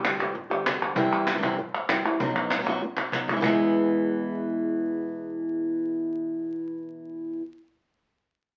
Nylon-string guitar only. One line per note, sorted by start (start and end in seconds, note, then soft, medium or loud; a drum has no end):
0.04 0.19 D3 medium
0.04 0.19 G3 medium
0.04 0.19 B3 medium
0.04 0.18 G4 medium
0.19 0.33 D3 soft
0.19 0.34 G3 soft
0.19 0.34 B3 medium
0.19 0.34 G4 medium
0.35 muted nylon-string guitar stroke medium
0.50 0.96 D3 soft
0.50 0.95 G3 medium
0.50 0.96 B3 medium
0.50 0.96 G4 medium
0.95 1.41 C3 loud
0.95 1.32 E3 loud
0.95 1.32 G3 loud
0.95 1.33 C4 loud
0.95 1.33 E4 loud
1.33 1.37 E3 medium
1.33 1.37 G3 medium
1.33 1.37 C4 medium
1.33 1.38 E4 medium
1.38 1.56 C3 medium
1.38 1.42 E3 medium
1.38 1.41 G3 medium
1.38 1.41 C4 medium
1.38 1.42 E4 medium
1.42 1.57 E3 loud
1.42 1.57 G3 medium
1.42 1.57 C4 medium
1.42 1.58 E4 medium
1.57 muted nylon-string guitar stroke medium
1.89 2.04 E3 medium
1.89 2.04 G3 medium
1.89 2.04 C4 medium
1.89 2.04 E4 medium
2.05 2.20 G3 medium
2.05 2.20 C4 medium
2.05 2.20 E4 medium
2.20 2.66 B2 medium
2.20 2.57 F#3 medium
2.20 2.58 B3 medium
2.20 2.58 D#4 loud
2.20 2.59 F#4 medium
2.58 2.62 F#3 medium
2.58 2.62 B3 medium
2.58 2.63 D#4 medium
2.58 2.63 F#4 medium
2.63 2.67 F#3 medium
2.63 2.67 B3 medium
2.63 2.67 D#4 medium
2.63 2.68 F#4 medium
2.67 2.82 B2 medium
2.67 2.82 F#3 medium
2.67 2.82 B3 medium
2.67 2.82 D#4 medium
2.67 2.83 F#4 medium
2.83 muted nylon-string guitar stroke medium
3.12 3.27 F#3 medium
3.12 3.28 B3 medium
3.12 3.28 D#4 medium
3.12 3.29 F#4 medium
3.30 3.35 B2 medium
3.30 3.35 E3 medium
3.30 3.35 G#3 medium
3.30 3.36 E4 medium
3.30 3.37 F#4 soft
3.36 3.39 B2 medium
3.36 3.39 E3 medium
3.36 3.40 G#3 medium
3.36 3.41 B3 medium
3.36 3.41 E4 medium
3.41 3.44 B2 medium
3.41 3.44 E3 medium
3.41 3.45 G#3 medium
3.41 3.45 B3 medium
3.41 3.45 E4 medium
3.45 7.41 E2 medium
3.45 7.41 B2 medium
3.45 7.41 E3 medium
3.45 7.41 G#3 medium
3.45 7.42 B3 loud
3.45 7.42 E4 loud